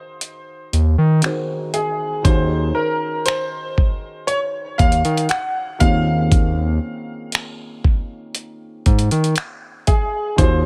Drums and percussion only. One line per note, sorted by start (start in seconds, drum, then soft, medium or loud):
0.21 closed hi-hat medium
0.73 closed hi-hat medium
1.22 finger snap loud
1.22 closed hi-hat medium
1.74 closed hi-hat medium
2.25 kick loud
2.25 closed hi-hat medium
3.26 finger snap loud
3.26 closed hi-hat medium
3.78 kick medium
4.28 closed hi-hat medium
4.79 kick medium
4.79 closed hi-hat medium
4.92 closed hi-hat soft
5.05 closed hi-hat medium
5.17 closed hi-hat medium
5.29 finger snap loud
5.29 closed hi-hat medium
5.80 kick medium
5.80 closed hi-hat medium
6.32 kick loud
6.32 closed hi-hat medium
7.32 finger snap loud
7.32 closed hi-hat medium
7.84 kick medium
8.35 closed hi-hat medium
8.86 kick medium
8.86 closed hi-hat soft
8.99 closed hi-hat soft
9.11 closed hi-hat medium
9.24 closed hi-hat medium
9.36 finger snap loud
9.36 closed hi-hat medium
9.87 kick medium
9.87 closed hi-hat medium
10.38 kick loud
10.38 closed hi-hat medium